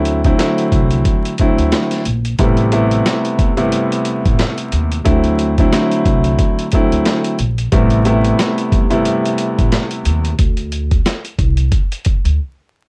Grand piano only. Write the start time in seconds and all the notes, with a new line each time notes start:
Already playing: D3 F#3 A3 C4 E4
0.25 D3 F#3 A3 C4 E4
0.38 D3 F#3 A3 C4 E4
1.40 D3 F#3 A3 C4 E4
2.39 C3 G3 A3 B3 E4
2.72 C3 G3 A3 B3 E4
3.57 C3 G3 A3 B3 E4
5.04 D3 F#3 A3 C4 E4
5.58 D3 F#3 A3 C4 E4
5.72 D3 F#3 A3 C4 E4
6.73 D3 F#3 A3 C4 E4
7.72 C3 G3 A3 B3 E4
8.05 C3 G3 A3 B3 E4
8.90 C3 G3 A3 B3 E4